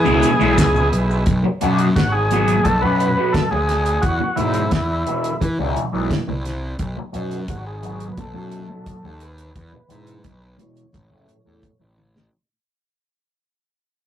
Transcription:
Already playing: B3 E4 G#4
0.04 C#2 E2 B2 E3, maracas
0.23 closed hi-hat, maracas
0.39 B1 E2 B2 E3, maracas
0.58 C#2, kick, snare, closed hi-hat, maracas
0.75 muted distorted electric guitar stroke, maracas
0.92 B1, closed hi-hat
1.11 maracas
1.26 B1, kick, closed hi-hat
1.44 muted distorted electric guitar stroke
1.61 F#2 B2 F#3 B3, closed hi-hat
1.78 closed hi-hat
1.96 G#1 F#4, muted distorted electric guitar stroke, kick, snare, closed hi-hat
2.12 G#4
2.31 B2 F#3 B3, closed hi-hat
2.48 closed hi-hat
2.64 B1 A4, muted distorted electric guitar stroke, kick, closed hi-hat
2.82 F#2 B2 F#3 B3 B4
3.00 closed hi-hat
3.17 B2 F#3 B3
3.32 A4, kick, snare, closed hi-hat
3.51 D2 G#4, muted distorted electric guitar stroke
3.69 snare, closed hi-hat
3.86 closed hi-hat
4.02 E2 F#4, kick, closed hi-hat
4.20 muted distorted electric guitar stroke
4.36 E2 G#2 B2 E3 E4, closed hi-hat
4.54 closed hi-hat
4.71 E2, muted distorted electric guitar stroke, kick, snare, closed hi-hat
5.07 E2 B2 E3, closed hi-hat
5.24 closed hi-hat
5.41 E3, muted distorted electric guitar stroke, kick, closed hi-hat
5.59 C#2 E2 B2 E3
5.76 closed hi-hat
5.93 B1 E2 B2 E3
6.11 kick, snare, closed hi-hat
6.28 C2, muted distorted electric guitar stroke
6.45 snare, closed hi-hat
6.79 B1, kick, closed hi-hat
6.97 muted distorted electric guitar stroke
7.13 F#2 B2 F#3 B3, closed hi-hat
7.31 closed hi-hat
7.48 G#1 F#4, muted distorted electric guitar stroke, kick, closed hi-hat
7.66 G#4
7.83 B2 F#3 B3, closed hi-hat
8.00 closed hi-hat
8.12 B4
8.17 B1 A4, muted distorted electric guitar stroke, kick, closed hi-hat
8.33 F#2 B2 F#3 B3
8.52 closed hi-hat
8.69 B2 F#3 B3
8.86 kick, closed hi-hat
9.04 D#2, muted distorted electric guitar stroke
9.20 B4, closed hi-hat
9.38 closed hi-hat
9.56 E2, kick, closed hi-hat
9.73 muted distorted electric guitar stroke
9.88 E2 G#2 B2 E3, closed hi-hat
10.07 closed hi-hat
10.24 B1, muted distorted electric guitar stroke, kick, closed hi-hat
10.58 E2 B2 E3 C#5, closed hi-hat
10.77 closed hi-hat
10.93 A1, muted distorted electric guitar stroke, kick, closed hi-hat
11.10 F#1 A2 E3 A3
11.29 closed hi-hat
11.45 E2 A2 E3 A3
11.63 kick, closed hi-hat
11.80 A1, muted distorted electric guitar stroke
11.98 high tom
12.16 snare

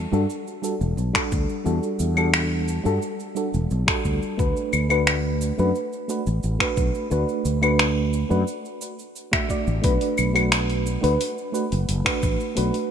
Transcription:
0.12 G2 G3 D4 F#4 A4, cabasa
0.30 cabasa
0.47 cabasa
0.62 G3 D4 F#4 A4, cabasa
0.81 E1, cabasa
0.97 B1, cabasa
1.13 G3 D4 F#4 A4, finger snap, kick
1.32 D2, kick, cabasa
1.49 cabasa
1.64 E2 G3 D4 F#4 A4, cabasa
1.83 cabasa
1.99 E2, cabasa
2.16 G3 D4 F#4 A4, cabasa, claves
2.34 finger snap, cabasa
2.68 cabasa
2.84 G2 G3 D4 F#4 A4, cabasa
3.02 cabasa
3.20 cabasa
3.35 G3 D4 F#4 A4, cabasa
3.54 E1, cabasa
3.71 B1, cabasa
3.86 G3 D4 F#4 A4, finger snap, kick
4.05 D2, kick, cabasa
4.22 cabasa
4.38 D2 A3 D4 F#4 B4, kick, cabasa
4.57 cabasa
4.73 D2, cabasa, claves
4.89 A3 D4 F#4 B4, cabasa, claves
5.07 finger snap, cabasa
5.41 cabasa
5.58 F#2 A3 D4 F#4 B4, cabasa
5.75 cabasa
5.93 cabasa
6.08 A3 D4 F#4 B4, cabasa
6.27 A1, cabasa
6.43 A1, cabasa
6.59 A3 D4 F#4 B4, finger snap, kick
6.77 B1, kick, cabasa
6.95 cabasa
7.10 D2 A3 D4 F#4 B4, cabasa
7.29 cabasa
7.45 D2, cabasa
7.62 A3 D4 F#4 B4, cabasa, claves
7.79 finger snap, cabasa
8.13 cabasa
8.29 F#2 A3 D4 F#4 B4, cabasa
8.48 cabasa
8.65 cabasa
8.81 cabasa
8.99 cabasa
9.16 cabasa
9.32 A3 D4 F#4 E5, finger snap, kick
9.48 A3 D4 F#4 D5, kick, cabasa
9.67 A1, cabasa
9.82 B1 A3 D4 F#4 B4, kick, open hi-hat, cabasa
10.01 open hi-hat, cabasa
10.18 B1, cabasa, claves
10.33 A3 D4 F#4 B4, open hi-hat, cabasa, claves
10.52 finger snap, open hi-hat, cabasa
10.70 open hi-hat
10.86 cabasa
11.01 D2 A3 D4 F#4 B4, open hi-hat, cabasa
11.21 open hi-hat, cabasa
11.38 cabasa
11.52 A3 D4 F#4 B4, cabasa
11.72 F#1, open hi-hat, cabasa
11.89 F#1, open hi-hat, cabasa
12.04 A3 D4 F#4 B4, finger snap, kick, open hi-hat
12.23 A1, kick, cabasa
12.40 cabasa
12.55 B1 A3 D4 F#4 B4, open hi-hat, cabasa
12.74 open hi-hat, cabasa

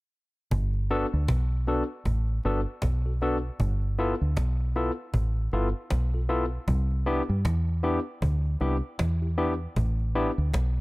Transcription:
0.51 G1, cajon bass
0.74 cajon slap
0.90 B3 D4 F#4 A4, cajon slap
1.13 D2
1.28 B1, cajon bass, cajon slap
1.51 cajon slap
1.67 B3 D4 F#4 A4, cajon slap
2.05 A1, cajon bass
2.28 cajon slap
2.43 G1 B3 D4 F#4 A4, cajon slap
2.82 B1, cajon bass, cajon slap
3.05 F#4 A4, cajon slap
3.21 B3 D4 F#4 A4, cajon slap
3.60 G1, cajon bass
3.82 cajon slap
3.98 B3 E4 F4 A4, cajon slap
4.21 D2
4.37 B1, cajon bass, cajon slap
4.60 cajon slap
4.76 B3 E4 F4 A4, cajon slap
5.14 A1, cajon bass
5.36 cajon slap
5.52 G1 B3 E4 F4 A4, cajon slap
5.90 B1, cajon bass, cajon slap
6.13 F4 A4, cajon slap
6.29 B3 E4 F4 A4, cajon slap
6.68 C2, cajon bass
6.91 cajon slap
7.06 B3 D4 E4 G4, cajon slap
7.29 G2
7.45 E2, cajon bass, cajon slap
7.68 cajon slap
7.83 B3 D4 E4 G4, cajon slap
8.22 D2, cajon bass
8.45 cajon slap
8.60 C2 B3 D4 E4 G4, cajon slap
8.99 E2, cajon bass, cajon slap
9.22 E4 G4, cajon slap
9.37 B3 D4 E4 G4, cajon slap
9.76 A1, cajon bass
10.00 cajon slap
10.15 B3 D4 E4 G4, cajon slap
10.38 D2, cajon slap
10.54 B1, cajon bass, cajon slap
10.77 cajon slap

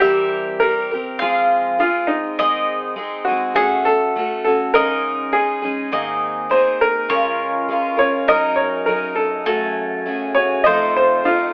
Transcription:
0.00 E3 G3 C4 G4 E5
0.04 G4 A#4
0.60 G3 C4 G4 A#4
0.64 A#4
0.91 C4 G4 A#4
1.19 F3 G#3 C4 F4 G#4 F5
1.79 G#3 C4 F4 G#4
2.07 D#4
2.39 G#2 D#3 G#3 C4 D#4 G#4 D#5
2.96 G#3 C4 D#4 G#4
3.25 D#4 F#4 G#4
3.29 G#3 C4
3.55 A3 C#4 F#4 G#4 A4 F#5
3.85 A4
4.16 A3 C#4 F#4 A4
4.44 C#4 F#4 A4
4.74 G#2 C#3 G#3 C#4 D#4 G#4 A#4 D#5
5.32 G#3 C#4 D#4 G#4
5.62 G#3 C#4 D#4 G#4
5.92 G#2 D#3 A#3 C4 D#4 G#4 D#5
6.49 A#3 C4 D#4 G#4 C5
6.81 A#4
7.09 C#2 C#3 G#3 C#4 F4 A#4 C#5
7.68 G#3 C#4 F4 A#4
7.97 F4 A#4 C#5
8.01 C#4
8.28 F#2 F#3 C#4 D#4 A#4 D#5
8.56 C#5
8.86 F#3 C#4 D#4 A#4
9.15 A4
9.45 F#3 A3 C#4 F#4 A4 G#5
10.06 A3 C#4 F#4 G#4
10.35 F#4 G#4 C#5
10.39 C#4
10.64 F2 D#3 F3 A3 C4 D#4 F4 A4 C5 D#5
10.97 C5
11.24 A3 C4 D#4 F4 A4

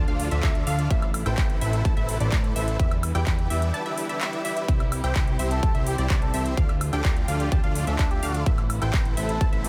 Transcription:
Already playing: A2 D3 F3 D4 F4
0.08 D2 D4 F4 A4 D5 F5, closed hi-hat
0.20 open hi-hat
0.31 D2 D4 F4 A4 D5 E5, closed hi-hat
0.43 D2 D4 F4 A4 D5 E5, kick, clap, closed hi-hat
0.55 closed hi-hat
0.67 D2 D4 F4 A4 D5 F5, open hi-hat
0.79 closed hi-hat
0.90 A1 C3 E3 A3 B3 E4 A4 B4 C5 E5, kick, closed hi-hat
1.02 closed hi-hat, high woodblock
1.14 open hi-hat, high woodblock
1.26 A1 E4 A4 B4 C5 G5, closed hi-hat, high woodblock
1.38 G5, kick, clap, closed hi-hat
1.50 closed hi-hat
1.61 A1 E4 A4 B4 C5 E5, open hi-hat
1.73 closed hi-hat
1.85 A1 E4 A4 B4 C5 A5, kick, closed hi-hat
1.97 A1 E4 A4 B4 C5 E5, closed hi-hat
2.09 open hi-hat
2.20 A1 E4 A4 B4 C5 D5, closed hi-hat
2.32 A2 E4 D5, kick, clap, closed hi-hat
2.44 closed hi-hat
2.56 A1 E4 A4 B4 C5 E5, open hi-hat
2.68 closed hi-hat
2.79 E2 D3 G3 E4 G4 D5 E5, kick, closed hi-hat
2.91 closed hi-hat, high woodblock
3.03 open hi-hat, high woodblock
3.15 E2 E4 G4 B4 D5 G5, closed hi-hat, high woodblock
3.27 E2 E4 G4 B4 D5 G5, kick, clap, closed hi-hat
3.39 closed hi-hat
3.50 E2 E4 G4 B4 D5 E5, open hi-hat
3.62 closed hi-hat
3.74 E4 G4 B4 D5 A5, closed hi-hat
3.86 E4 G4 B4 D5 E5, closed hi-hat
3.98 open hi-hat
4.09 E4 G4 B4 D5 E5, closed hi-hat
4.21 E4 G4 B4 D5 E5, clap, closed hi-hat
4.33 closed hi-hat
4.45 E4 G4 B4 D5 E5, open hi-hat
4.57 closed hi-hat
4.68 C2 C3 E3 C4 E4 G4 C5 E5, kick, closed hi-hat
4.80 closed hi-hat, high woodblock
4.92 open hi-hat, high woodblock
5.04 C2 C4 E4 G4 C5 G5, closed hi-hat, high woodblock
5.16 C2 C4 E4 C5 G5, kick, clap, closed hi-hat
5.27 closed hi-hat
5.39 C2 C4 E4 G4 C5 E5, open hi-hat
5.51 A4, closed hi-hat
5.63 C4 E4 G4 C5 A5, kick, closed hi-hat
5.75 C2 C4 E4 G4 C5 E5, closed hi-hat
5.87 G4, open hi-hat
5.98 C2 C4 E4 G4 C5 D5, closed hi-hat
6.10 C2 C4 E4 C5 D5, kick, clap, closed hi-hat
6.22 A4, closed hi-hat
6.34 C2 C4 E4 G4 C5 E5, open hi-hat
6.46 closed hi-hat
6.57 D2 A2 D3 F3 D4 F4 A4 F5, kick, closed hi-hat
6.69 closed hi-hat, high woodblock
6.81 open hi-hat, high woodblock
6.93 D2 D4 F4 G4 A4 D5 G5, closed hi-hat, high woodblock
7.05 D4 F4 G4 A4 D5 G5, kick, clap, closed hi-hat
7.16 closed hi-hat
7.28 D2 D4 F4 A4 D5 F5, open hi-hat
7.40 G4, closed hi-hat
7.52 D2 D4 G4 A4 D5 A5, kick, closed hi-hat
7.64 D2 D4 F4 A4 D5 F5, closed hi-hat
7.75 open hi-hat
7.87 D2 D4 F4 A4 D5 E5, closed hi-hat
7.99 E5, kick, clap, closed hi-hat
8.11 G4, closed hi-hat
8.23 D2 D4 F4 A4 D5 F5, open hi-hat
8.34 closed hi-hat
8.46 C3 E3 A3 B3 E4 A4 B4 C5 E5, kick, closed hi-hat
8.58 closed hi-hat, high woodblock
8.70 open hi-hat, high woodblock
8.82 A1 E4 A4 B4 C5 G5, closed hi-hat, high woodblock
8.93 A1 E4 B4 C5 G5, kick, clap, closed hi-hat
9.05 closed hi-hat
9.17 A1 E4 A4 B4 C5 E5, open hi-hat
9.29 A4, closed hi-hat
9.41 A1 A5, kick, closed hi-hat
9.53 A1 E4 A4 B4 C5 E5, closed hi-hat
9.64 G4, open hi-hat

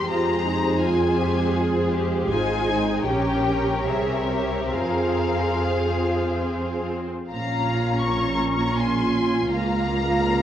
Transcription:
Already playing: G4 C5
0.08 F2 G#3 F4 G#4 A#5
0.44 D#4
0.82 F4 G#5
1.20 G4
1.57 G#4
1.94 G4
2.30 G#1 D#4 F4 C5 G#5
2.69 D#4
3.06 A#1 C#4 G4 A#4 C#5 G5
3.86 C2 C4 G#4 E5
4.29 G4
4.73 F2 F4 G#4 C5 F5
5.61 G#4
7.30 A#1 A#2 C#4 F4 F5 A#5
8.03 A#5 C#6
8.77 G#5 C6
9.50 C#2 A#3 F5 A#5

